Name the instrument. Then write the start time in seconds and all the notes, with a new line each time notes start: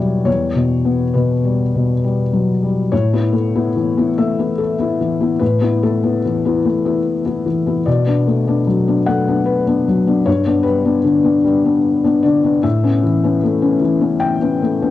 felt piano
Already playing: E2 B2 F#3 G3 B3 C#5 D5
0.25 E2 C#5
0.55 B2
0.85 B3
1.14 B2 B4
1.44 G3
1.75 B2
2.04 G3
2.33 F#3
2.63 G3
2.92 A2 C#5
3.13 B3 E4
3.33 A3
3.55 B3 E4
3.76 E3
3.97 B3 E4
4.18 A3 E5
4.39 B3 E4
4.58 A4
4.79 B3 E4
5.01 E3
5.20 B3 E4
5.39 A2 B4
5.61 B3 E4
5.83 A3 A4
6.03 B3 E4
6.25 E3
6.45 B3 E4
6.65 A3
6.85 B3 E4
7.25 B3 E4
7.46 E3
7.67 B3 E4
7.86 B2 D5
8.07 B3 D4
8.27 A3
8.47 B3 D4
8.67 F#3
8.88 B3 D4
9.06 A3 F#5
9.28 B3 D4
9.46 B4
9.67 B3 D4
9.88 F#3
10.07 B3 D4
10.26 G2 C#5
10.46 B3 D4
10.63 G3 B4
10.85 B3 D4
11.04 D3
11.24 B3 D4
11.44 G3
11.65 B3 D4
12.04 B3 D4
12.23 D3 D5
12.44 B3 D4
12.63 A2 E5
12.83 B3 C#4
13.03 E3
13.24 B3 C#4
13.44 A3
13.62 B3 C#4
13.82 E3
14.01 B3 C#4
14.20 G5
14.41 B3 C#4
14.62 A3
14.82 B3 C#4